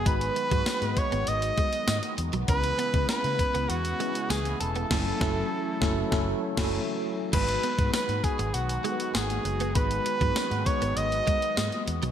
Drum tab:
CC |----------------|----------------|x----------x----|x---------------|
HH |xxxxxxxxxxxxxxxx|xxxxxxxxxxxxxxxx|----------------|xxxxxxxxxxxxxxxx|
TB |----x-------x---|----x-------x---|----------------|----x-------x---|
SD |----o-------o---|----o-------o---|o-o---o-o--o----|----o-------o---|
BD |o--o--o---o-----|o--o--o---------|o-o---o-o--o----|o--o--o---------|

CC |----------------|
HH |xxxxxxxxxxxxxxxx|
TB |----x-------x---|
SD |----o-------o---|
BD |o--o--o---o-----|